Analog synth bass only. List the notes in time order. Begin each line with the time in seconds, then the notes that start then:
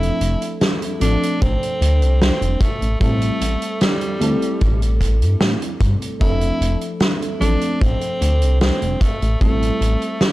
Already playing: F1
0.21 F1
1.01 A1
1.42 A1
1.81 D2
2.01 C2
2.41 F1
2.81 A1
3.01 A1
3.41 A1
4.21 D2
4.62 A1
5.21 G2
5.41 A2
5.81 G2
6.21 F1
6.61 F1
7.41 A1
7.81 A1
8.21 D2
8.42 C2
8.82 F1
9.21 A1
9.41 A1
9.81 A1